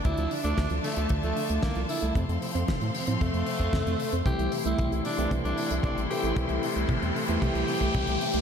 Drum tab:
HH |xxoxxxoxxxoxxxox|xxoxxxoxxxo-xxox|xxoxxxoxxxoxxxox|xxoxxxoxxxoxxxox|
SD |----o-------o---|----o-------o---|----------------|----------------|
T2 |----------------|----------------|o---o---o---o---|o---o---o---o---|
BD |o---o---o---o---|o---o---o--oo---|o---o---o---o---|o---o---o--oo---|